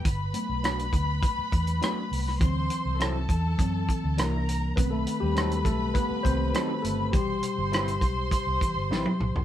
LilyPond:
<<
  \new Staff \with { instrumentName = "Violin section" } { \time 4/4 \key g \major \tempo 4 = 102 <b' b''>1 | <c'' c'''>4 <a' a''>2 <bes' bes''>4 | <b' b''>1 | <c'' c'''>1 | }
  \new Staff \with { instrumentName = "Clean electric guitar" } { \time 4/4 \key g \major r4 <b d' fis' b'>8 r4. <b d' fis' b'>8 r8 | r4 <fis c' e' a'>8 r4. <g d' e' bes'>8 r8 | r4 <fis c' dis' a'>8 r4. <fis c' dis' a'>8 r8 | r4 <g c' e' b'>8 r4. <g c' e' b'>8 r8 | }
  \new Staff \with { instrumentName = "Tine electric piano" } { \time 4/4 \key g \major r1 | r1 | <b b'>16 <a a'>8 <g g'>8. <a a'>8 <b b'>8 c''4 <a a'>8 | g'2.~ g'8 r8 | }
  \new Staff \with { instrumentName = "Tine electric piano" } { \clef bass \time 4/4 \key g \major r8 <fis a b>4. r4 <fis a b>8 r8 | <e fis c'>8 r4. <e fis c'>8 r8 <e bes d'>4 | <dis a c'>8 r2 <dis a c'>8 r4 | <b, c g>8 r2. r8 | }
  \new Staff \with { instrumentName = "Fingered electric bass" } { \clef bass \time 4/4 \key g \major g,,8 r16 b,,8. d,8 r8 e,8 r8 c,8 | d,8 r16 c,8. e,8 fis,8 r16 d,16 c,4 | b,,8 r16 dis,8. b,,8 r8 c,8 r8 g,,8 | a,,8 r16 g,,8. b,,8 r16 c,16 a,,16 g,,16 a,,16 r16 b,,16 c,16 | }
  \new DrumStaff \with { instrumentName = "Drums" } \drummode { \time 4/4 <hh bd>8 hh8 <hh ss>16 hh16 <hh bd>8 <hh bd>8 <hh bd>16 hh16 <hh ss>8 hho16 ss16 | <hh bd>8 hh8 <hh ss>8 <hh bd>8 <hh bd>8 <hh bd>8 <hh ss>8 hh8 | <hh bd>8 hh8 <hh ss>16 hh16 <hh bd ss>8 <hh bd>8 <hh bd>8 <hh ss>8 hh8 | <hh bd>8 hh8 <hh ss>16 hh16 <hh bd>8 <hh bd>8 <hh bd>8 sn16 tommh16 toml16 tomfh16 | }
>>